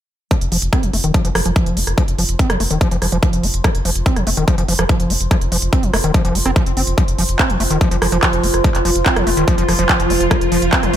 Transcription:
0.31 F3 F4, kick, closed hi-hat
0.41 F1, closed hi-hat
0.52 F1 F3, open hi-hat
0.57 C6
0.62 F1, closed hi-hat
0.67 C5
0.73 C4, kick, cross-stick, closed hi-hat
0.83 F1 F3, closed hi-hat
0.93 F1 A3, open hi-hat
1.04 D#1 D#3, closed hi-hat
1.14 F3, kick, closed hi-hat
1.25 F1 F3, closed hi-hat
1.35 F1 F3, cross-stick, open hi-hat
1.46 F1 F3, closed hi-hat
1.56 F3, kick, closed hi-hat
1.66 F1, closed hi-hat
1.77 F1 C4, open hi-hat
1.87 F1, cross-stick, closed hi-hat
1.98 F3, kick, closed hi-hat
2.08 F1, closed hi-hat
2.18 F1 F3, open hi-hat
2.29 F1, closed hi-hat
2.39 C4, kick, closed hi-hat
2.50 F1 F3, cross-stick, closed hi-hat
2.60 F1 A3, open hi-hat
2.71 D#1 D#3, closed hi-hat
2.81 F3, kick, closed hi-hat
2.91 F1 F3, closed hi-hat
3.02 F1 F3, cross-stick, open hi-hat
3.12 F1 F3, closed hi-hat
3.23 F3, kick, closed hi-hat
3.33 F1, closed hi-hat
3.43 F1 C4, open hi-hat
3.54 F1, closed hi-hat
3.64 F3, kick, cross-stick, closed hi-hat
3.75 F1, closed hi-hat
3.85 F1 F3, open hi-hat
3.96 F1, closed hi-hat
4.06 C4, kick, closed hi-hat
4.16 F1 F3, cross-stick, closed hi-hat
4.27 F1 A3, open hi-hat
4.37 D#1 D#3, closed hi-hat
4.48 F3, kick, closed hi-hat
4.58 F1 F3, closed hi-hat
4.68 F1 F3, open hi-hat
4.79 F1 F3, cross-stick, closed hi-hat
4.89 F3, kick, closed hi-hat
5.00 F1, closed hi-hat
5.10 F1 C4, open hi-hat
5.21 F1, closed hi-hat
5.31 F3, kick, cross-stick, closed hi-hat
5.41 F1, closed hi-hat
5.52 F1 F3, open hi-hat
5.62 F1, closed hi-hat
5.73 C4, kick, closed hi-hat
5.83 F1 F3, closed hi-hat
5.93 F1 A3, cross-stick, open hi-hat
6.04 D#1 D#3, closed hi-hat
6.14 F3, kick, closed hi-hat
6.25 F1 F3, closed hi-hat
6.35 F1 A3, open hi-hat
6.46 F1 C4, cross-stick, closed hi-hat
6.56 F3, kick, closed hi-hat
6.66 F1, closed hi-hat
6.77 F#1 C4, open hi-hat
6.87 F1, closed hi-hat
6.98 F3 F4, kick, closed hi-hat
7.08 F1, closed hi-hat
7.18 F1 F3, open hi-hat
7.29 F1, closed hi-hat
7.39 C4, kick, cross-stick, clap, closed hi-hat
7.50 F1 F3, closed hi-hat
7.60 F1 A3, open hi-hat
7.71 D#1 D#3, closed hi-hat
7.81 F3, kick, closed hi-hat
7.91 F1 F3, closed hi-hat
8.02 F1 F3, cross-stick, open hi-hat
8.12 F1 F3, closed hi-hat
8.23 F3, kick, clap, closed hi-hat
8.33 F1, closed hi-hat
8.43 F1 C4, open hi-hat
8.54 F1, cross-stick, closed hi-hat
8.64 F3, kick, closed hi-hat
8.75 F1, clap, closed hi-hat
8.85 F1 F3, open hi-hat
8.96 F1, closed hi-hat
9.06 C4, kick, clap, closed hi-hat
9.16 F1 F3, cross-stick, closed hi-hat
9.27 F1 A3, open hi-hat
9.37 D#1 D#3, closed hi-hat
9.48 F3, kick, closed hi-hat
9.58 F1 F3, closed hi-hat
9.68 F1 F3, cross-stick, open hi-hat
9.79 F1 F3, closed hi-hat
9.89 F3, kick, clap, closed hi-hat
10.00 F1, closed hi-hat
10.10 F1 C4, open hi-hat
10.21 F1, closed hi-hat
10.31 F3, kick, cross-stick, closed hi-hat
10.41 F1, closed hi-hat
10.52 F1 F3, open hi-hat
10.62 F1, closed hi-hat
10.73 C4, kick, clap, closed hi-hat
10.83 F1 F3, cross-stick, closed hi-hat
10.93 open hi-hat

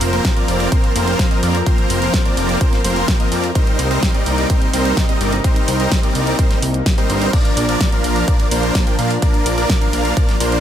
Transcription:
Already playing: F3 A#3 C4 A#4 C5
0.01 F1, open hi-hat
0.13 F3 A#3 C4 A#4 C5, closed hi-hat
0.25 kick, snare, closed hi-hat
0.37 F3 A#3 C4 A#4 D5, closed hi-hat
0.48 F1, open hi-hat
0.60 closed hi-hat
0.72 F3 A#3 C4 A#4 C5, kick, closed hi-hat
0.84 closed hi-hat
0.96 F1 F3 A#3 C4 A#4 C5, open hi-hat
1.07 closed hi-hat
1.19 kick, snare, closed hi-hat
1.31 F3 A#3 C4 A#4 D#5, closed hi-hat
1.43 F2 F3 A#3 C4 A#4 D5, open hi-hat
1.55 closed hi-hat
1.66 F3 A#3 C4 A#4 C5, kick, closed hi-hat
1.78 closed hi-hat
1.90 F1, open hi-hat
2.02 F3 A#3 C4 A#4 C5, closed hi-hat
2.14 kick, snare, closed hi-hat
2.25 F3 A#3 C4 A#4 D5, closed hi-hat
2.37 F1, open hi-hat
2.49 closed hi-hat
2.61 F3 A#3 C4 A#4 C5, kick, closed hi-hat
2.73 snare, closed hi-hat
2.84 F1 F3 A#3 C4 A#4 C5, open hi-hat
2.96 closed hi-hat
3.08 kick, snare, closed hi-hat
3.20 F3 A#3 C4 A#4 D#5, closed hi-hat
3.32 F2 F3 A#3 C4 A#4 D5, open hi-hat
3.44 closed hi-hat
3.55 C3 G3 A#3 C4 D#4 A#4 C5, kick, closed hi-hat
3.67 closed hi-hat
3.79 C2, open hi-hat
3.91 G3 C4 D#4 A#4 C5, closed hi-hat
4.03 kick, snare, closed hi-hat
4.14 G3 C4 D#4 A#4 D5, closed hi-hat
4.26 C2, open hi-hat
4.38 closed hi-hat
4.50 G3 C4 D#4 A#4 C5, kick, closed hi-hat
4.62 closed hi-hat
4.73 C2 G3 C4 D#4 A#4 C5, open hi-hat
4.85 closed hi-hat
4.97 kick, snare, closed hi-hat
5.09 G3 C4 D#4 A#4 D#5, closed hi-hat
5.21 G1 G3 C4 D#4 A#4 D5, open hi-hat
5.33 closed hi-hat
5.44 G3 C4 D#4 A#4 C5, kick, closed hi-hat
5.56 closed hi-hat
5.68 C2, open hi-hat
5.80 G3 C4 D#4 A#4 C5, closed hi-hat
5.92 kick, snare, closed hi-hat
6.03 G3 C4 D#4 A#4 D5, closed hi-hat
6.15 C2, open hi-hat
6.27 closed hi-hat
6.39 G3 C4 D#4 A#4 C5, kick, closed hi-hat
6.51 snare, closed hi-hat
6.62 C2, open hi-hat
6.74 closed hi-hat
6.86 kick, snare, closed hi-hat
6.98 G3 C4 D#4 A#4 C5, closed hi-hat
7.10 G1, open hi-hat
7.22 closed hi-hat
7.33 F3 A#3 D4 A#4 D5, kick, closed hi-hat, crash
7.45 closed hi-hat
7.57 A#1, open hi-hat
7.69 F3 A#3 D4 A#4 D5, closed hi-hat
7.81 kick, snare, closed hi-hat
7.92 F3 A#3 D4 A#4 F5, closed hi-hat
8.04 A#1, open hi-hat
8.16 closed hi-hat
8.28 F3 A#3 D4 A#4 D5, kick, closed hi-hat
8.40 closed hi-hat
8.51 A#1 F3 A#3 D4 A#4 C5, open hi-hat
8.63 closed hi-hat
8.75 kick, snare, closed hi-hat
8.87 F3 A#3 D4 A#4 G5, closed hi-hat
8.99 A#2 F3 A#3 D4 A#4 F5, open hi-hat
9.11 closed hi-hat
9.22 F3 A#3 D4 A#4 D5, kick, closed hi-hat
9.34 closed hi-hat
9.46 A#1, open hi-hat
9.58 F3 A#3 D4 A#4 D5, closed hi-hat
9.70 kick, snare, closed hi-hat
9.81 F3 A#3 D4 A#4 F5, closed hi-hat
9.93 A#1, open hi-hat
10.05 closed hi-hat
10.17 F3 A#3 D4 A#4 D5, kick, closed hi-hat
10.29 snare, closed hi-hat
10.40 A#1 F3 A#3 D4 A#4 C5, open hi-hat
10.52 closed hi-hat

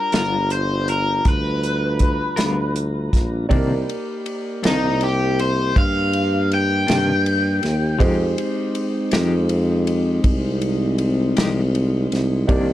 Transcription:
Already playing: G3 D4 F4 A#4 A#5
0.12 G1 G3 B3 F4 A#4, snare, closed hi-hat
0.50 C5, closed hi-hat
0.88 A#4, closed hi-hat
1.25 D2 B4, kick, closed hi-hat
1.63 closed hi-hat
1.99 kick, closed hi-hat
2.36 D2 G3 B3 F4 A#4, snare, closed hi-hat
2.76 closed hi-hat
3.13 A#1, kick, snare, closed hi-hat
3.49 C2 C3 D#3 A#3 D4 D#4 G4 A#4 D5, kick, ride
3.89 ride
4.26 ride
4.63 C2 C3 D#3 A#3 D4 D#4, snare, ride
5.01 G4, ride
5.39 C5, ride
5.76 G2 F5, kick, ride
6.13 ride
6.52 G5, ride
6.87 G2 C3 D#3 A#3 D4, snare, ride
7.26 ride
7.63 D#2, snare, ride
7.99 F2 F3 G#3 D#4 G4 G#4 C5, kick, ride
8.03 C4 D#4
8.38 ride
8.75 ride
9.11 F2 F3 G#3 D#4 G4, snare, ride
9.49 ride
9.87 ride
10.24 C2, kick, ride
10.62 ride
10.98 ride
11.37 C2 F3 G#3 D#4 G4, snare, ride
11.75 ride
12.12 C2, snare, ride
12.47 C2 C3 D#3 A#3 D#4 G4 A#4 D5, kick, ride
12.52 D4

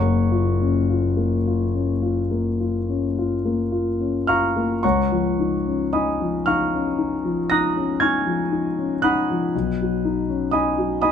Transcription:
Already playing: F#1 C#5 F#5 A#5 C#6
0.02 A#3
0.31 F4
0.62 C#4
0.90 F4
1.17 A#3
1.47 F4
1.74 C#4
2.02 F4
2.31 A#3
2.60 F4
2.89 C#4
3.18 F4
3.45 A#3
3.72 F4
4.00 C#4
4.27 F4 F5 A#5 C#6 F6
4.56 A#3
4.83 C#2 C#5 F#5 A#5 C#6
5.12 F3
5.40 D#4
5.67 C#4
5.93 D#4 D#5 G#5 B5 D#6
6.21 F3
6.46 D#4 F5 A#5 C#6 F6
6.74 C#4
6.98 D#4
7.24 F3
7.50 D#4 A#5 D#6 F#6 A#6
7.77 C#4
8.00 D#4 G#5 C#6 F6 G#6
8.26 F3
8.51 D#4
8.78 C#4
9.02 D#4 F#5 B5 D#6 F#6
9.30 F3
9.55 B1
9.82 F#3
10.05 D#4
10.29 C#4
10.51 D#4 D#5 G#5 B5 D#6
10.78 F#3
11.02 D#4 D#5 G#5 B5 D#6

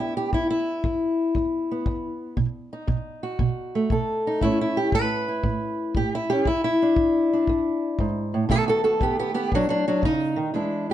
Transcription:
Already playing: E2 B3 D4
0.00 E4
0.17 G4
0.33 E2 E4, kick
0.50 E4
0.84 E2, kick
1.35 E2, kick
1.71 B3
1.86 E2, kick
2.37 B2, kick
2.73 D#4
2.87 B2, kick
3.23 F#4
3.39 B2, kick
3.75 A3
3.90 B2 A4, kick
4.27 D#4
4.41 A2 A3 C#4 E4, kick
4.61 E4
4.77 G4
4.92 A2 B4, kick
5.28 E4
5.44 A2, kick
5.95 A2 G4, kick
6.15 E4
6.30 C#4 G4
6.45 E2 E4, kick
6.64 E4
6.82 D4
6.96 E2, kick
7.33 D4
7.47 E2, kick
7.99 G#2, kick
8.34 A2
8.49 B2 D#3 A3 B3 F#4 A4, kick
8.68 F#4 A4
8.84 F#4 A4
9.00 B2 B3 G4, kick
9.19 B3 G4
9.34 B3 G4
9.51 B2 F#3 D4, kick
9.69 F#3 D4
9.88 F#3 D4
10.02 C#3 D#4, kick
10.36 D#3
10.54 E2 E3 G#3 D4 E4
10.90 D4

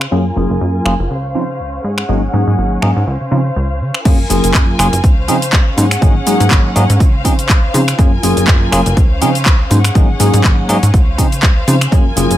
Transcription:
Already playing: C5 F5
0.01 finger snap
0.11 F#2 F#3 A#3 C#4 F4 G#4 A#4 G#5
0.36 F#1 F#3 A#3 C#4 F4 G#4
0.50 F#1
0.61 F#2
0.85 F#1 F#3 A#3 C#4 F4 G#4, finger snap
0.99 F#1
1.10 C#2 C#4 C5 F5
1.34 C#3 F3 C4 C#4 D#4 F4
1.60 C#2
1.84 G#2 G#4 F#5
1.98 finger snap
2.08 G#1 F#3 A#3 C#4 D#4 G#4
2.33 G#2 F#3 A#3 C#4 D#4 G#4
2.47 G#2
2.58 G#1
2.82 G#2 F#3 A#3 C#4 D#4 G#4, finger snap
2.96 G#2
3.07 C#2 C5 F5
3.21 C#3
3.31 C#3 F3 C4 C#4 D#4 F4
3.56 C#2
3.81 C#3
3.94 finger snap
4.05 F#2 F#3 A#3 C#4 F4 G#4 A#4 G#5, kick, closed hi-hat, crash, shaker
4.30 F#1 F#3 A#3 C#4 F4 G#4, open hi-hat, shaker
4.44 F#1, closed hi-hat, shaker
4.54 F#2, kick, clap, closed hi-hat, shaker
4.79 F#1 F#3 A#3 C#4 F4 G#4, finger snap, open hi-hat, shaker
4.93 F#1, closed hi-hat, shaker
5.03 C#2 C#4 C5 F5, kick, closed hi-hat, shaker
5.28 C#3 F3 C4 C#4 D#4 G#4, open hi-hat, shaker
5.42 closed hi-hat, shaker
5.53 C#2, kick, clap, closed hi-hat, shaker
5.77 G#2 F#3 A#3 C#4 D#4 G#4 C5 F#5, open hi-hat, shaker
5.91 finger snap, closed hi-hat, shaker
6.01 G#1 F#3 A#3 C#4 D#4 G#4, kick, closed hi-hat, shaker
6.26 G#2 F#3 A#3 C#4 D#4 G#4, open hi-hat, shaker
6.40 G#2, closed hi-hat, shaker
6.51 G#1, kick, clap, closed hi-hat, shaker
6.75 G#2 F#3 A#3 C#4 D#4 G#4, open hi-hat, shaker
6.90 G#2, closed hi-hat, shaker
7.00 C#2 C5 F5, kick, closed hi-hat, shaker
7.25 C#3 F3 C4 C#4 D#4 G#4, kick, open hi-hat, shaker
7.39 closed hi-hat, shaker
7.49 C#2, kick, clap, closed hi-hat, shaker
7.74 C#3 F3 C4 C#4 D#4 C5, open hi-hat, shaker
7.88 finger snap, closed hi-hat, shaker
7.98 F#2 F#3 A#3 C#4 F4 G#4 A#4 G#5, kick, closed hi-hat, shaker
8.23 F#1 F#3 A#3 C#4 F4 G#4, open hi-hat, shaker
8.37 F#1, closed hi-hat, shaker
8.47 F#2, kick, clap, closed hi-hat, shaker
8.72 F#1 F#3 A#3 C#4 F4 G#4, finger snap, open hi-hat, shaker
8.86 F#1, closed hi-hat, shaker
8.97 C#2 C#4 C5 F5, kick, closed hi-hat, shaker
9.21 C#3 F3 C4 C#4 D#4 G#4, open hi-hat, shaker
9.35 closed hi-hat, shaker
9.46 C#2, kick, clap, closed hi-hat, shaker
9.70 G#2 F#3 A#3 C#4 D#4 G#4 C5 F#5, open hi-hat, shaker
9.84 finger snap, closed hi-hat, shaker
9.95 G#1 F#3 A#3 C#4 D#4 G#4, kick, closed hi-hat, shaker
10.19 G#2 F#3 A#3 C#4 D#4 G#4, open hi-hat, shaker
10.34 G#2, closed hi-hat, shaker
10.44 G#1, kick, clap, closed hi-hat, shaker
10.69 G#2 F#3 A#3 C#4 D#4 G#4, open hi-hat, shaker
10.83 G#2, closed hi-hat, shaker
10.94 C#2 C5 F5, kick, closed hi-hat, shaker
11.18 C#3 F3 C4 C#4 D#4 G#4, kick, open hi-hat, shaker
11.32 closed hi-hat, shaker
11.43 C#2, kick, clap, closed hi-hat, shaker
11.67 C#3 F3 C4 C#4 D#4 C5, open hi-hat, shaker
11.81 finger snap, closed hi-hat, shaker
11.92 F#2 F#3 A#3 C#4 F4 G#4 A#4 G#5, kick, closed hi-hat, shaker
12.16 F#1 F#3 A#3 C#4 F4 G#4, open hi-hat, shaker
12.30 F#1, closed hi-hat, shaker

